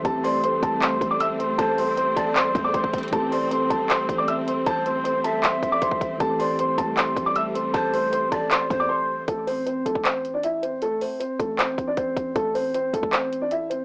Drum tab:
HH |x---o---x---x---x---x---x---x---|x---o---x---x---x---x---x---xxxx|x---o---x---x---x---x---x---x---|x---x---x---x---x---x---x---x---|
CP |----------------x---------------|----------------x---------------|----------------x---------------|----------------x---------------|
BD |o-----------o-------o-----------|o-----------o-------o---o-o-o---|o-----------o-------o-----------|o-------------------o---o-o-o---|

HH |x---o---x---x---x---x---x---x---|x---o---x---x---x---x-----------|x---o---x---x---x---x---x---x---|x---o---x---x---x---x---x---x---|
CP |----------------x---------------|----------------x---------------|----------------x---------------|----------------x---------------|
BD |o-----------o-------o-----------|o-----------o-------o-----------|o-------------o-----------------|------------o-------o---o---o---|

HH |x---o---x---x---x---x---x---x---|
CP |----------------x---------------|
BD |o-------------o-----------------|